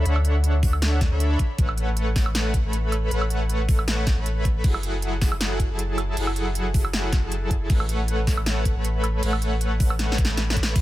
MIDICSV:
0, 0, Header, 1, 4, 480
1, 0, Start_track
1, 0, Key_signature, 3, "major"
1, 0, Tempo, 382166
1, 70, Time_signature, 4, 2, 24, 8
1, 13584, End_track
2, 0, Start_track
2, 0, Title_t, "Supersaw synth"
2, 0, Program_c, 0, 81
2, 71, Note_on_c, 0, 62, 89
2, 71, Note_on_c, 0, 69, 80
2, 71, Note_on_c, 0, 73, 79
2, 71, Note_on_c, 0, 76, 84
2, 71, Note_on_c, 0, 78, 99
2, 1244, Note_off_c, 0, 62, 0
2, 1244, Note_off_c, 0, 69, 0
2, 1244, Note_off_c, 0, 73, 0
2, 1244, Note_off_c, 0, 76, 0
2, 1244, Note_off_c, 0, 78, 0
2, 1399, Note_on_c, 0, 62, 84
2, 1399, Note_on_c, 0, 69, 77
2, 1399, Note_on_c, 0, 73, 73
2, 1399, Note_on_c, 0, 76, 74
2, 1399, Note_on_c, 0, 83, 88
2, 1737, Note_off_c, 0, 62, 0
2, 1737, Note_off_c, 0, 69, 0
2, 1737, Note_off_c, 0, 73, 0
2, 1737, Note_off_c, 0, 76, 0
2, 1737, Note_off_c, 0, 83, 0
2, 1991, Note_on_c, 0, 57, 86
2, 1991, Note_on_c, 0, 69, 83
2, 1991, Note_on_c, 0, 71, 78
2, 1991, Note_on_c, 0, 73, 81
2, 1991, Note_on_c, 0, 78, 97
2, 3164, Note_off_c, 0, 57, 0
2, 3164, Note_off_c, 0, 69, 0
2, 3164, Note_off_c, 0, 71, 0
2, 3164, Note_off_c, 0, 73, 0
2, 3164, Note_off_c, 0, 78, 0
2, 3319, Note_on_c, 0, 57, 79
2, 3319, Note_on_c, 0, 71, 74
2, 3319, Note_on_c, 0, 73, 74
2, 3319, Note_on_c, 0, 83, 93
2, 3320, Note_on_c, 0, 69, 76
2, 3883, Note_off_c, 0, 57, 0
2, 3884, Note_off_c, 0, 69, 0
2, 3884, Note_off_c, 0, 71, 0
2, 3884, Note_off_c, 0, 73, 0
2, 3884, Note_off_c, 0, 83, 0
2, 3910, Note_on_c, 0, 57, 88
2, 3910, Note_on_c, 0, 69, 80
2, 3910, Note_on_c, 0, 71, 82
2, 3910, Note_on_c, 0, 73, 82
2, 3910, Note_on_c, 0, 78, 98
2, 5084, Note_off_c, 0, 57, 0
2, 5084, Note_off_c, 0, 69, 0
2, 5084, Note_off_c, 0, 71, 0
2, 5084, Note_off_c, 0, 73, 0
2, 5084, Note_off_c, 0, 78, 0
2, 5239, Note_on_c, 0, 57, 79
2, 5239, Note_on_c, 0, 69, 75
2, 5239, Note_on_c, 0, 71, 76
2, 5239, Note_on_c, 0, 73, 75
2, 5239, Note_on_c, 0, 83, 90
2, 5803, Note_off_c, 0, 57, 0
2, 5803, Note_off_c, 0, 73, 0
2, 5804, Note_off_c, 0, 69, 0
2, 5804, Note_off_c, 0, 71, 0
2, 5804, Note_off_c, 0, 83, 0
2, 5830, Note_on_c, 0, 54, 87
2, 5830, Note_on_c, 0, 64, 79
2, 5830, Note_on_c, 0, 68, 81
2, 5830, Note_on_c, 0, 69, 80
2, 5830, Note_on_c, 0, 78, 95
2, 7003, Note_off_c, 0, 54, 0
2, 7003, Note_off_c, 0, 64, 0
2, 7003, Note_off_c, 0, 68, 0
2, 7003, Note_off_c, 0, 69, 0
2, 7003, Note_off_c, 0, 78, 0
2, 7159, Note_on_c, 0, 54, 81
2, 7159, Note_on_c, 0, 64, 72
2, 7159, Note_on_c, 0, 68, 76
2, 7159, Note_on_c, 0, 69, 75
2, 7159, Note_on_c, 0, 81, 92
2, 7723, Note_off_c, 0, 54, 0
2, 7723, Note_off_c, 0, 64, 0
2, 7723, Note_off_c, 0, 68, 0
2, 7723, Note_off_c, 0, 69, 0
2, 7723, Note_off_c, 0, 81, 0
2, 7750, Note_on_c, 0, 54, 86
2, 7750, Note_on_c, 0, 64, 82
2, 7750, Note_on_c, 0, 68, 83
2, 7750, Note_on_c, 0, 69, 80
2, 7750, Note_on_c, 0, 78, 94
2, 8923, Note_off_c, 0, 54, 0
2, 8923, Note_off_c, 0, 64, 0
2, 8923, Note_off_c, 0, 68, 0
2, 8923, Note_off_c, 0, 69, 0
2, 8923, Note_off_c, 0, 78, 0
2, 9079, Note_on_c, 0, 54, 83
2, 9079, Note_on_c, 0, 64, 77
2, 9079, Note_on_c, 0, 68, 74
2, 9079, Note_on_c, 0, 69, 76
2, 9079, Note_on_c, 0, 81, 89
2, 9643, Note_off_c, 0, 54, 0
2, 9643, Note_off_c, 0, 64, 0
2, 9643, Note_off_c, 0, 68, 0
2, 9643, Note_off_c, 0, 69, 0
2, 9643, Note_off_c, 0, 81, 0
2, 9669, Note_on_c, 0, 78, 99
2, 9670, Note_on_c, 0, 57, 88
2, 9670, Note_on_c, 0, 69, 81
2, 9670, Note_on_c, 0, 71, 81
2, 9670, Note_on_c, 0, 73, 82
2, 10843, Note_off_c, 0, 57, 0
2, 10843, Note_off_c, 0, 69, 0
2, 10843, Note_off_c, 0, 71, 0
2, 10843, Note_off_c, 0, 73, 0
2, 10843, Note_off_c, 0, 78, 0
2, 10998, Note_on_c, 0, 69, 75
2, 10998, Note_on_c, 0, 71, 74
2, 10998, Note_on_c, 0, 73, 76
2, 10999, Note_on_c, 0, 57, 82
2, 10999, Note_on_c, 0, 83, 88
2, 11563, Note_off_c, 0, 57, 0
2, 11563, Note_off_c, 0, 69, 0
2, 11563, Note_off_c, 0, 71, 0
2, 11563, Note_off_c, 0, 73, 0
2, 11563, Note_off_c, 0, 83, 0
2, 11590, Note_on_c, 0, 57, 89
2, 11590, Note_on_c, 0, 69, 81
2, 11590, Note_on_c, 0, 71, 81
2, 11590, Note_on_c, 0, 73, 81
2, 11590, Note_on_c, 0, 78, 97
2, 12763, Note_off_c, 0, 57, 0
2, 12763, Note_off_c, 0, 69, 0
2, 12763, Note_off_c, 0, 71, 0
2, 12763, Note_off_c, 0, 73, 0
2, 12763, Note_off_c, 0, 78, 0
2, 12919, Note_on_c, 0, 57, 80
2, 12919, Note_on_c, 0, 71, 74
2, 12919, Note_on_c, 0, 83, 92
2, 12920, Note_on_c, 0, 69, 78
2, 12920, Note_on_c, 0, 73, 76
2, 13484, Note_off_c, 0, 57, 0
2, 13484, Note_off_c, 0, 69, 0
2, 13484, Note_off_c, 0, 71, 0
2, 13484, Note_off_c, 0, 73, 0
2, 13484, Note_off_c, 0, 83, 0
2, 13510, Note_on_c, 0, 62, 88
2, 13510, Note_on_c, 0, 69, 82
2, 13510, Note_on_c, 0, 73, 81
2, 13510, Note_on_c, 0, 76, 83
2, 13510, Note_on_c, 0, 78, 100
2, 13584, Note_off_c, 0, 62, 0
2, 13584, Note_off_c, 0, 69, 0
2, 13584, Note_off_c, 0, 73, 0
2, 13584, Note_off_c, 0, 76, 0
2, 13584, Note_off_c, 0, 78, 0
2, 13584, End_track
3, 0, Start_track
3, 0, Title_t, "Sub bass"
3, 0, Program_c, 1, 38
3, 69, Note_on_c, 1, 38, 101
3, 1373, Note_off_c, 1, 38, 0
3, 1399, Note_on_c, 1, 38, 96
3, 1714, Note_off_c, 1, 38, 0
3, 1990, Note_on_c, 1, 33, 101
3, 3293, Note_off_c, 1, 33, 0
3, 3318, Note_on_c, 1, 33, 98
3, 3888, Note_off_c, 1, 33, 0
3, 3909, Note_on_c, 1, 33, 99
3, 5213, Note_off_c, 1, 33, 0
3, 5238, Note_on_c, 1, 33, 98
3, 5807, Note_off_c, 1, 33, 0
3, 5830, Note_on_c, 1, 30, 97
3, 7133, Note_off_c, 1, 30, 0
3, 7158, Note_on_c, 1, 30, 100
3, 7728, Note_off_c, 1, 30, 0
3, 7750, Note_on_c, 1, 30, 100
3, 9053, Note_off_c, 1, 30, 0
3, 9078, Note_on_c, 1, 30, 99
3, 9669, Note_on_c, 1, 33, 100
3, 9688, Note_off_c, 1, 30, 0
3, 10973, Note_off_c, 1, 33, 0
3, 10998, Note_on_c, 1, 33, 100
3, 11567, Note_off_c, 1, 33, 0
3, 11589, Note_on_c, 1, 33, 100
3, 12893, Note_off_c, 1, 33, 0
3, 12918, Note_on_c, 1, 33, 100
3, 13488, Note_off_c, 1, 33, 0
3, 13510, Note_on_c, 1, 38, 100
3, 13584, Note_off_c, 1, 38, 0
3, 13584, End_track
4, 0, Start_track
4, 0, Title_t, "Drums"
4, 70, Note_on_c, 9, 42, 78
4, 195, Note_off_c, 9, 42, 0
4, 199, Note_on_c, 9, 76, 76
4, 310, Note_on_c, 9, 42, 67
4, 325, Note_off_c, 9, 76, 0
4, 436, Note_off_c, 9, 42, 0
4, 550, Note_on_c, 9, 42, 81
4, 675, Note_off_c, 9, 42, 0
4, 790, Note_on_c, 9, 36, 114
4, 790, Note_on_c, 9, 46, 90
4, 916, Note_off_c, 9, 36, 0
4, 916, Note_off_c, 9, 46, 0
4, 920, Note_on_c, 9, 76, 80
4, 1030, Note_on_c, 9, 38, 127
4, 1030, Note_on_c, 9, 42, 82
4, 1045, Note_off_c, 9, 76, 0
4, 1156, Note_off_c, 9, 38, 0
4, 1156, Note_off_c, 9, 42, 0
4, 1270, Note_on_c, 9, 36, 110
4, 1270, Note_on_c, 9, 38, 67
4, 1270, Note_on_c, 9, 42, 71
4, 1396, Note_off_c, 9, 36, 0
4, 1396, Note_off_c, 9, 38, 0
4, 1396, Note_off_c, 9, 42, 0
4, 1510, Note_on_c, 9, 42, 84
4, 1636, Note_off_c, 9, 42, 0
4, 1750, Note_on_c, 9, 36, 65
4, 1750, Note_on_c, 9, 42, 64
4, 1876, Note_off_c, 9, 36, 0
4, 1876, Note_off_c, 9, 42, 0
4, 1990, Note_on_c, 9, 42, 76
4, 1991, Note_on_c, 9, 36, 127
4, 2116, Note_off_c, 9, 36, 0
4, 2116, Note_off_c, 9, 42, 0
4, 2119, Note_on_c, 9, 76, 76
4, 2230, Note_on_c, 9, 42, 64
4, 2245, Note_off_c, 9, 76, 0
4, 2356, Note_off_c, 9, 42, 0
4, 2470, Note_on_c, 9, 42, 81
4, 2596, Note_off_c, 9, 42, 0
4, 2710, Note_on_c, 9, 38, 67
4, 2710, Note_on_c, 9, 46, 90
4, 2711, Note_on_c, 9, 36, 115
4, 2836, Note_off_c, 9, 36, 0
4, 2836, Note_off_c, 9, 38, 0
4, 2836, Note_off_c, 9, 46, 0
4, 2839, Note_on_c, 9, 76, 79
4, 2950, Note_on_c, 9, 38, 127
4, 2950, Note_on_c, 9, 42, 82
4, 2965, Note_off_c, 9, 76, 0
4, 3076, Note_off_c, 9, 38, 0
4, 3076, Note_off_c, 9, 42, 0
4, 3190, Note_on_c, 9, 42, 67
4, 3191, Note_on_c, 9, 36, 67
4, 3316, Note_off_c, 9, 36, 0
4, 3316, Note_off_c, 9, 42, 0
4, 3430, Note_on_c, 9, 42, 80
4, 3556, Note_off_c, 9, 42, 0
4, 3670, Note_on_c, 9, 42, 61
4, 3670, Note_on_c, 9, 76, 60
4, 3796, Note_off_c, 9, 42, 0
4, 3796, Note_off_c, 9, 76, 0
4, 3910, Note_on_c, 9, 42, 74
4, 4036, Note_off_c, 9, 42, 0
4, 4039, Note_on_c, 9, 76, 81
4, 4150, Note_on_c, 9, 42, 63
4, 4165, Note_off_c, 9, 76, 0
4, 4275, Note_off_c, 9, 42, 0
4, 4390, Note_on_c, 9, 42, 75
4, 4515, Note_off_c, 9, 42, 0
4, 4630, Note_on_c, 9, 36, 111
4, 4630, Note_on_c, 9, 46, 91
4, 4755, Note_off_c, 9, 46, 0
4, 4756, Note_off_c, 9, 36, 0
4, 4759, Note_on_c, 9, 76, 82
4, 4870, Note_on_c, 9, 38, 125
4, 4870, Note_on_c, 9, 42, 76
4, 4884, Note_off_c, 9, 76, 0
4, 4995, Note_off_c, 9, 38, 0
4, 4995, Note_off_c, 9, 42, 0
4, 5110, Note_on_c, 9, 36, 112
4, 5110, Note_on_c, 9, 38, 64
4, 5110, Note_on_c, 9, 42, 65
4, 5235, Note_off_c, 9, 38, 0
4, 5235, Note_off_c, 9, 42, 0
4, 5236, Note_off_c, 9, 36, 0
4, 5350, Note_on_c, 9, 42, 80
4, 5476, Note_off_c, 9, 42, 0
4, 5590, Note_on_c, 9, 36, 64
4, 5590, Note_on_c, 9, 42, 58
4, 5716, Note_off_c, 9, 36, 0
4, 5716, Note_off_c, 9, 42, 0
4, 5830, Note_on_c, 9, 36, 127
4, 5830, Note_on_c, 9, 42, 76
4, 5830, Note_on_c, 9, 49, 49
4, 5956, Note_off_c, 9, 36, 0
4, 5956, Note_off_c, 9, 42, 0
4, 5956, Note_off_c, 9, 49, 0
4, 5959, Note_on_c, 9, 76, 85
4, 6070, Note_on_c, 9, 42, 61
4, 6084, Note_off_c, 9, 76, 0
4, 6195, Note_off_c, 9, 42, 0
4, 6310, Note_on_c, 9, 42, 78
4, 6436, Note_off_c, 9, 42, 0
4, 6550, Note_on_c, 9, 36, 106
4, 6550, Note_on_c, 9, 38, 63
4, 6550, Note_on_c, 9, 46, 95
4, 6676, Note_off_c, 9, 36, 0
4, 6676, Note_off_c, 9, 38, 0
4, 6676, Note_off_c, 9, 46, 0
4, 6679, Note_on_c, 9, 76, 87
4, 6790, Note_on_c, 9, 38, 120
4, 6790, Note_on_c, 9, 42, 78
4, 6805, Note_off_c, 9, 76, 0
4, 6916, Note_off_c, 9, 38, 0
4, 6916, Note_off_c, 9, 42, 0
4, 7030, Note_on_c, 9, 36, 63
4, 7030, Note_on_c, 9, 42, 66
4, 7156, Note_off_c, 9, 36, 0
4, 7156, Note_off_c, 9, 42, 0
4, 7270, Note_on_c, 9, 42, 77
4, 7396, Note_off_c, 9, 42, 0
4, 7510, Note_on_c, 9, 42, 58
4, 7510, Note_on_c, 9, 76, 65
4, 7636, Note_off_c, 9, 42, 0
4, 7636, Note_off_c, 9, 76, 0
4, 7750, Note_on_c, 9, 42, 77
4, 7750, Note_on_c, 9, 49, 49
4, 7875, Note_off_c, 9, 42, 0
4, 7875, Note_off_c, 9, 49, 0
4, 7878, Note_on_c, 9, 76, 82
4, 7990, Note_on_c, 9, 42, 65
4, 8004, Note_off_c, 9, 76, 0
4, 8115, Note_off_c, 9, 42, 0
4, 8230, Note_on_c, 9, 42, 81
4, 8356, Note_off_c, 9, 42, 0
4, 8470, Note_on_c, 9, 36, 103
4, 8470, Note_on_c, 9, 46, 98
4, 8595, Note_off_c, 9, 36, 0
4, 8596, Note_off_c, 9, 46, 0
4, 8599, Note_on_c, 9, 76, 84
4, 8710, Note_on_c, 9, 38, 118
4, 8710, Note_on_c, 9, 42, 80
4, 8725, Note_off_c, 9, 76, 0
4, 8835, Note_off_c, 9, 38, 0
4, 8835, Note_off_c, 9, 42, 0
4, 8950, Note_on_c, 9, 36, 104
4, 8950, Note_on_c, 9, 38, 61
4, 8950, Note_on_c, 9, 42, 67
4, 9075, Note_off_c, 9, 36, 0
4, 9075, Note_off_c, 9, 38, 0
4, 9075, Note_off_c, 9, 42, 0
4, 9190, Note_on_c, 9, 42, 79
4, 9315, Note_off_c, 9, 42, 0
4, 9430, Note_on_c, 9, 36, 60
4, 9430, Note_on_c, 9, 42, 62
4, 9555, Note_off_c, 9, 36, 0
4, 9555, Note_off_c, 9, 42, 0
4, 9669, Note_on_c, 9, 42, 82
4, 9669, Note_on_c, 9, 49, 46
4, 9670, Note_on_c, 9, 36, 119
4, 9795, Note_off_c, 9, 36, 0
4, 9795, Note_off_c, 9, 42, 0
4, 9795, Note_off_c, 9, 49, 0
4, 9798, Note_on_c, 9, 76, 80
4, 9910, Note_on_c, 9, 42, 68
4, 9924, Note_off_c, 9, 76, 0
4, 10035, Note_off_c, 9, 42, 0
4, 10150, Note_on_c, 9, 42, 83
4, 10276, Note_off_c, 9, 42, 0
4, 10390, Note_on_c, 9, 36, 102
4, 10390, Note_on_c, 9, 38, 58
4, 10390, Note_on_c, 9, 46, 99
4, 10515, Note_off_c, 9, 36, 0
4, 10516, Note_off_c, 9, 38, 0
4, 10516, Note_off_c, 9, 46, 0
4, 10519, Note_on_c, 9, 76, 87
4, 10630, Note_on_c, 9, 38, 118
4, 10630, Note_on_c, 9, 42, 87
4, 10645, Note_off_c, 9, 76, 0
4, 10755, Note_off_c, 9, 38, 0
4, 10755, Note_off_c, 9, 42, 0
4, 10870, Note_on_c, 9, 36, 60
4, 10870, Note_on_c, 9, 42, 68
4, 10995, Note_off_c, 9, 36, 0
4, 10995, Note_off_c, 9, 42, 0
4, 11110, Note_on_c, 9, 42, 84
4, 11235, Note_off_c, 9, 42, 0
4, 11350, Note_on_c, 9, 42, 62
4, 11350, Note_on_c, 9, 76, 64
4, 11476, Note_off_c, 9, 42, 0
4, 11476, Note_off_c, 9, 76, 0
4, 11590, Note_on_c, 9, 42, 83
4, 11590, Note_on_c, 9, 49, 44
4, 11715, Note_off_c, 9, 42, 0
4, 11715, Note_off_c, 9, 49, 0
4, 11719, Note_on_c, 9, 76, 81
4, 11830, Note_on_c, 9, 42, 69
4, 11845, Note_off_c, 9, 76, 0
4, 11956, Note_off_c, 9, 42, 0
4, 12070, Note_on_c, 9, 42, 84
4, 12195, Note_off_c, 9, 42, 0
4, 12310, Note_on_c, 9, 36, 103
4, 12310, Note_on_c, 9, 46, 98
4, 12435, Note_off_c, 9, 46, 0
4, 12436, Note_off_c, 9, 36, 0
4, 12439, Note_on_c, 9, 76, 84
4, 12550, Note_on_c, 9, 38, 72
4, 12550, Note_on_c, 9, 42, 87
4, 12565, Note_off_c, 9, 76, 0
4, 12676, Note_off_c, 9, 38, 0
4, 12676, Note_off_c, 9, 42, 0
4, 12710, Note_on_c, 9, 38, 76
4, 12790, Note_on_c, 9, 36, 102
4, 12790, Note_on_c, 9, 42, 73
4, 12836, Note_off_c, 9, 38, 0
4, 12870, Note_on_c, 9, 38, 87
4, 12916, Note_off_c, 9, 36, 0
4, 12916, Note_off_c, 9, 42, 0
4, 12996, Note_off_c, 9, 38, 0
4, 13030, Note_on_c, 9, 38, 92
4, 13030, Note_on_c, 9, 42, 86
4, 13156, Note_off_c, 9, 38, 0
4, 13156, Note_off_c, 9, 42, 0
4, 13190, Note_on_c, 9, 38, 101
4, 13270, Note_on_c, 9, 36, 60
4, 13270, Note_on_c, 9, 42, 66
4, 13316, Note_off_c, 9, 38, 0
4, 13351, Note_on_c, 9, 38, 107
4, 13396, Note_off_c, 9, 36, 0
4, 13396, Note_off_c, 9, 42, 0
4, 13476, Note_off_c, 9, 38, 0
4, 13511, Note_on_c, 9, 36, 127
4, 13511, Note_on_c, 9, 42, 83
4, 13511, Note_on_c, 9, 49, 45
4, 13511, Note_on_c, 9, 57, 105
4, 13584, Note_off_c, 9, 36, 0
4, 13584, Note_off_c, 9, 42, 0
4, 13584, Note_off_c, 9, 49, 0
4, 13584, Note_off_c, 9, 57, 0
4, 13584, End_track
0, 0, End_of_file